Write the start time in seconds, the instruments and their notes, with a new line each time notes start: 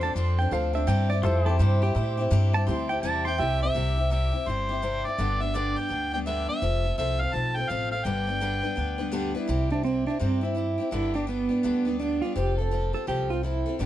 Already playing: upright bass E2, pedal steel guitar F4 A4 C5
0.01 steel-string acoustic guitar C4 D4 A4, pedal steel guitar A5
0.15 upright bass F2, steel-string acoustic guitar F3 C4 D4 A4, pedal steel guitar C6
0.38 steel-string acoustic guitar C4 D4 A4, pedal steel guitar G5
0.51 upright bass D2, steel-string acoustic guitar F3 C4 D4 A4, honky-tonk piano F4 A4 C5, pedal steel guitar F5
0.73 steel-string acoustic guitar C4 D4 A4, pedal steel guitar E5
0.87 upright bass G2, steel-string acoustic guitar C3 G3 C4 E4 G4, pedal steel guitar G5
1.10 steel-string acoustic guitar C4 E4 G4, pedal steel guitar D5
1.23 upright bass F2, steel-string acoustic guitar G3 C4 E4 G4, honky-tonk piano E4 G4 C5, pedal steel guitar F4 A4 C5
1.44 pedal steel guitar E4 A4, steel-string acoustic guitar G4
1.48 steel-string acoustic guitar C4 E4, pedal steel guitar G4
1.59 upright bass G2, steel-string acoustic guitar C3 G3 C4 E4 G4, pedal steel guitar C5
1.82 steel-string acoustic guitar C4 E4 G4, pedal steel guitar G4
1.95 upright bass A2, steel-string acoustic guitar G3 C4 E4 G4, honky-tonk piano E4 G4 C5, pedal steel guitar C5
2.17 steel-string acoustic guitar C4 E4 G4
2.30 upright bass G2, steel-string acoustic guitar C3 G3 C4 E4 G4
2.53 steel-string acoustic guitar C4 E4 G4, pedal steel guitar A5
2.67 upright bass D2, steel-string acoustic guitar G3 C4 E4 G4, honky-tonk piano E4 G4 C5, pedal steel guitar C6
2.89 steel-string acoustic guitar C4 E4 G4, pedal steel guitar G5
3.02 upright bass E2, steel-string acoustic guitar C3 G3 C4 E4 G4, pedal steel guitar A5
3.25 steel-string acoustic guitar C4 E4 G4, harmonica G5, pedal steel guitar C6
3.38 upright bass C2, steel-string acoustic guitar G3 C4 E4 G4, honky-tonk piano E4 G4 C5, harmonica E5, pedal steel guitar G5
3.60 steel-string acoustic guitar C4 E4 G4, pedal steel guitar E5, harmonica E5
3.75 upright bass C2, steel-string acoustic guitar C3 G3 C4 E4 G4
3.97 steel-string acoustic guitar C4 E4 G4
4.10 steel-string acoustic guitar C3 G3 C4 E4 G4, harmonica E5
4.32 steel-string acoustic guitar C4 E4 G4
4.46 upright bass G1, steel-string acoustic guitar G3 C4 E4 G4, harmonica C5
4.69 steel-string acoustic guitar C4 E4 G4
4.82 steel-string acoustic guitar C3 G3 C4 E4 G4
5.05 steel-string acoustic guitar C4 E4 G4, harmonica D5
5.18 upright bass G1, steel-string acoustic guitar G2 D3 G3 B3 D4 G4
5.40 steel-string acoustic guitar G3 B3 D4 G4, harmonica E5
5.54 steel-string acoustic guitar G2 D3 G3 B3 D4 G4, harmonica D5
5.76 steel-string acoustic guitar G3 B3 D4 G4, harmonica G5
5.89 upright bass D2, steel-string acoustic guitar G3 B3 D4 G4
6.12 steel-string acoustic guitar G3 B3 D4 G4, harmonica G5
6.26 steel-string acoustic guitar G2 D3 G3 B3 D4 G4, harmonica E5
6.48 steel-string acoustic guitar G3 B3 D4 G4, harmonica E5
6.62 upright bass F1, steel-string acoustic guitar F3 C4 F4 A4
6.84 steel-string acoustic guitar C4 F4 A4
6.98 upright bass C2, steel-string acoustic guitar F3 C4 F4 A4, harmonica E5
7.20 steel-string acoustic guitar C4 F4 A4, harmonica F5
7.33 upright bass B1, steel-string acoustic guitar F3 C4 F4 A4, harmonica A5
7.56 steel-string acoustic guitar C4 F4 A4, harmonica G5
7.69 upright bass A1, steel-string acoustic guitar F3 C4 F4 A4, harmonica F5
7.91 steel-string acoustic guitar C4 F4 A4, harmonica F5
8.05 upright bass G1, steel-string acoustic guitar G2 D3 G3 B3 D4 B4, harmonica G5
8.27 steel-string acoustic guitar G3 B3 D4 B4
8.40 steel-string acoustic guitar G2 D3 G3 B3 D4 B4
8.62 steel-string acoustic guitar G3 B3 D4 B4
8.76 upright bass D2, steel-string acoustic guitar G3 B3 D4 B4
8.98 steel-string acoustic guitar G3 B3 D4 B4
9.12 steel-string acoustic guitar G2 D3 G3 B3 D4 B4, pedal steel guitar G4
9.35 steel-string acoustic guitar G3 B3 D4 B4, pedal steel guitar E4
9.47 upright bass C2, steel-string acoustic guitar C3 G3 C4 E4 G4
9.70 steel-string acoustic guitar C4 E4 G4, pedal steel guitar D4
9.83 steel-string acoustic guitar G3 C4 E4 G4, pedal steel guitar C4
10.06 steel-string acoustic guitar C4 E4 G4, pedal steel guitar D4
10.19 upright bass G2, steel-string acoustic guitar C3 G3 C4 E4 G4, pedal steel guitar C4
10.41 steel-string acoustic guitar C4 E4 G4, pedal steel guitar E4
10.55 steel-string acoustic guitar G3 C4 E4 G4
10.78 steel-string acoustic guitar C4 E4 G4
10.91 upright bass G1, steel-string acoustic guitar G2 D3 G3 B3 D4 G4, pedal steel guitar E4
11.14 steel-string acoustic guitar G3 B3 D4 G4, pedal steel guitar D4
11.27 steel-string acoustic guitar G3 B3 D4 G4, pedal steel guitar B3
11.49 steel-string acoustic guitar G3 B3 D4 G4
11.63 upright bass D2, steel-string acoustic guitar G2 D3 G3 B3 D4 G4
11.85 steel-string acoustic guitar G3 B3 D4 G4
11.99 steel-string acoustic guitar G3 B3 D4 G4, pedal steel guitar D4
12.22 steel-string acoustic guitar G3 B3 D4 G4, pedal steel guitar F4
12.36 upright bass F1, steel-string acoustic guitar F3 C4 F4 A4, pedal steel guitar G4
12.58 steel-string acoustic guitar C4 F4 A4, pedal steel guitar A4
12.71 steel-string acoustic guitar F3 C4 F4 A4
12.93 steel-string acoustic guitar C4 F4 A4, pedal steel guitar A4
13.07 upright bass C2, steel-string acoustic guitar F3 C4 F4 A4, pedal steel guitar G4
13.30 steel-string acoustic guitar C4 F4 A4, pedal steel guitar F4
13.43 steel-string acoustic guitar F3 C4 F4 A4, pedal steel guitar E4
13.66 steel-string acoustic guitar C4 F4 A4
13.79 upright bass G1, steel-string acoustic guitar G2 D3 G3 B3 D4 G4, pedal steel guitar D4